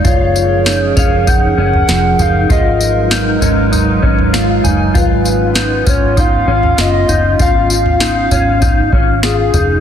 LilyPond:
<<
  \new Staff \with { instrumentName = "Synth bell" } { \time 4/4 \key cis \mixolydian \tempo 4 = 98 r4. cis''4.~ cis''16 r8. | r2. r8 gis''8~ | gis''8 r2. r8 | r1 | }
  \new Staff \with { instrumentName = "Soft synth lead" } { \time 4/4 \key cis \mixolydian cis''4. eis''8 fis''4. eis''8 | dis''4. r2 r8 | b'4. cis''8 eis''4 dis''4 | eis''2. gis'4 | }
  \new Staff \with { instrumentName = "Clean electric guitar" } { \time 4/4 \key cis \mixolydian eis'4 dis'8 cis'8 dis'8 cis'8 eis8 dis'8 | eis'4 dis'8 cis'8 dis'8 cis'8 eis'8 dis'8 | eis'4 dis'8 cis'8 dis'8 cis'8 eis'8 dis'8 | eis'4 dis'8 cis'8 dis'8 cis'8 eis'8 dis'8 | }
  \new Staff \with { instrumentName = "Ambient pad" } { \time 4/4 \key cis \mixolydian <eis cis' gis' ais'>1 | <fis gis dis' b'>1 | <b cis' eis'>1~ | <b cis' eis'>1 | }
  \new Staff \with { instrumentName = "Fingered electric bass" } { \clef bass \time 4/4 \key cis \mixolydian fis,,4. fis,,4 fis,,8 eis,,8 fis,,8 | gis,,4. gis,,4 gis,,4 fis,,8 | gis,,4. gis,,4 gis,,8 fis,,8 fis,,8 | gis,,4. gis,,4 gis,,4 eis,,8 | }
  \new DrumStaff \with { instrumentName = "Drums" } \drummode { \time 4/4 <bd tamb tomfh>8 tamb8 <sn tamb>8 <bd tamb tomfh>8 <bd tamb tomfh>8. tomfh16 <sn tamb>8 <tamb tomfh>8 | <bd tamb tomfh>8 tamb8 <sn tamb>8 <tamb tomfh>8 <tamb tomfh>8 bd16 tomfh16 <sn tamb>8 <tamb tomfh>8 | <bd tamb tomfh>8 tamb8 <sn tamb>8 <bd tamb tomfh>8 <bd tamb tomfh>8. tomfh16 <sn tamb>8 <tamb tomfh>8 | <bd tamb tomfh>8 tamb16 tomfh16 <sn tamb>8 <tamb tomfh>8 <bd tamb tomfh>8 bd8 <sn tamb>8 <tamb tomfh>8 | }
>>